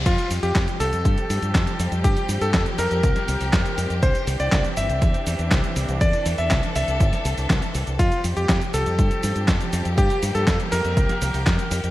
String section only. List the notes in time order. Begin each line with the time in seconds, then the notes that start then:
0.06 F3 G3 C4 G4
4.03 E3 D4
6.01 A4
8.00 F3 G3 G4
9.98 A#3